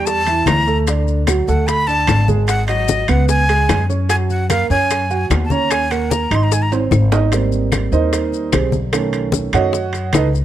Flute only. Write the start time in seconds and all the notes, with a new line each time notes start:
0.06 A5
0.47 A#5
1.48 F#5
1.67 B5
1.87 A5
2.48 F#5
2.68 D#5
3.09 F#5
3.29 G#5
4.10 G#5
4.30 F#5
4.50 F5
4.70 G#5
5.45 A5
5.51 A#5
5.71 G#5
5.91 F#5
6.11 A#5
6.35 C6
6.43 A#5
6.53 G#5
6.62 A#5